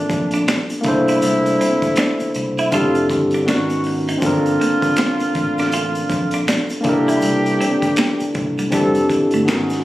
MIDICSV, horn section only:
0, 0, Header, 1, 2, 480
1, 0, Start_track
1, 0, Tempo, 750000
1, 782, Time_signature, 4, 2, 24, 8
1, 6298, End_track
2, 0, Start_track
2, 0, Title_t, "Horn section"
2, 0, Program_c, 0, 61
2, 0, Note_on_c, 0, 57, 60
2, 0, Note_on_c, 0, 58, 62
2, 0, Note_on_c, 0, 62, 65
2, 277, Note_off_c, 0, 57, 0
2, 277, Note_off_c, 0, 58, 0
2, 277, Note_off_c, 0, 62, 0
2, 541, Note_on_c, 0, 64, 78
2, 542, Note_on_c, 0, 46, 69
2, 542, Note_on_c, 0, 57, 66
2, 1482, Note_off_c, 0, 64, 0
2, 1483, Note_off_c, 0, 46, 0
2, 1483, Note_off_c, 0, 57, 0
2, 1741, Note_on_c, 0, 48, 67
2, 1741, Note_on_c, 0, 57, 69
2, 1741, Note_on_c, 0, 65, 70
2, 1977, Note_off_c, 0, 48, 0
2, 1977, Note_off_c, 0, 57, 0
2, 1977, Note_off_c, 0, 65, 0
2, 2221, Note_on_c, 0, 51, 62
2, 2221, Note_on_c, 0, 59, 63
2, 2221, Note_on_c, 0, 66, 65
2, 2457, Note_off_c, 0, 51, 0
2, 2457, Note_off_c, 0, 59, 0
2, 2457, Note_off_c, 0, 66, 0
2, 2701, Note_on_c, 0, 50, 64
2, 2701, Note_on_c, 0, 65, 75
2, 2702, Note_on_c, 0, 58, 67
2, 4116, Note_off_c, 0, 50, 0
2, 4116, Note_off_c, 0, 58, 0
2, 4116, Note_off_c, 0, 65, 0
2, 4381, Note_on_c, 0, 62, 64
2, 4382, Note_on_c, 0, 52, 65
2, 4382, Note_on_c, 0, 67, 74
2, 5322, Note_off_c, 0, 62, 0
2, 5323, Note_off_c, 0, 52, 0
2, 5323, Note_off_c, 0, 67, 0
2, 5581, Note_on_c, 0, 60, 66
2, 5581, Note_on_c, 0, 69, 71
2, 5582, Note_on_c, 0, 52, 65
2, 5817, Note_off_c, 0, 52, 0
2, 5817, Note_off_c, 0, 60, 0
2, 5817, Note_off_c, 0, 69, 0
2, 6062, Note_on_c, 0, 51, 61
2, 6062, Note_on_c, 0, 59, 63
2, 6062, Note_on_c, 0, 68, 67
2, 6297, Note_off_c, 0, 51, 0
2, 6297, Note_off_c, 0, 59, 0
2, 6297, Note_off_c, 0, 68, 0
2, 6298, End_track
0, 0, End_of_file